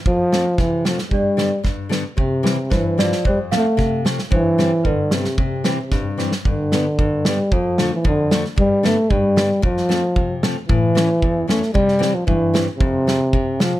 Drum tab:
SD |--o-o-oo|--o-o-o-|--o-o-oo|--o-o-oo|
BD |o---o---|o---o---|o---o---|o---o---|

SD |--o---oo|--o-o-oo|--o---o-|--o---oo|
BD |o---o---|o---o---|o---o---|o---o---|

SD |--o---o-|-oo---o-|--o---oo|-oo---o-|
BD |o---o---|o---o---|o---o---|o---o---|

SD |--o---o-|
BD |o---o---|